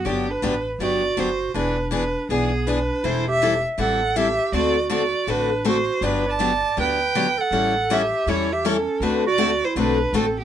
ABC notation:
X:1
M:4/4
L:1/16
Q:"Swing" 1/4=161
K:G
V:1 name="Violin"
G2 B4 z2 d4 c4 | B4 B4 ^G4 B4 | c2 e4 z2 f4 e4 | d4 d4 B4 c4 |
B2 a6 g6 f2- | f4 e4 ^c2 e2 A4 | B2 d4 c2 B4 A2 G2 |]
V:2 name="Clarinet"
B,2 D4 z2 F4 F4 | D4 D4 B,4 D4 | E2 G4 z2 A4 G4 | F4 F4 D4 F4 |
D2 d6 B6 A2- | A4 G4 E2 G2 ^C4 | D2 F4 E2 D4 C2 B,2 |]
V:3 name="Steel-string acoustic guitar"
[D,F,B,DG]2 z2 [D,F,B,DG] z3 [D,F,B,DG]2 z2 [D,F,B,DG] z3 | [E,B,D^G]2 z2 [E,B,DG] z3 [E,B,DG]2 z2 [E,B,DG] z3 | [E,G,CEA]2 z2 [E,G,CEA] z3 [E,G,CEA]2 z2 [E,G,CEA] z3 | [D,A,CFA]2 z2 [D,A,CFA] z3 [D,A,CFA]2 z2 [D,A,CFA] z3 |
[D,F,B,DG]2 z2 [D,F,B,DG] z3 [D,F,B,DG]2 z2 [D,F,B,DG] z3 | [E,G,^CEA]2 z2 [E,G,CEA] z3 [E,G,CEA]2 z2 [E,G,CEA] z3 | [D,A,CFA]2 z2 [D,A,CFA] z3 [D,A,CFA]2 z2 [D,A,CFA] z3 |]
V:4 name="Upright bass" clef=bass
G,,,4 A,,,4 G,,,4 F,,,4 | E,,,8 B,,,8 | E,,,8 A,,,8 | D,,8 A,,,8 |
G,,,8 D,,8 | A,,,8 E,,8 | D,,8 B,,,4 A,,,4 |]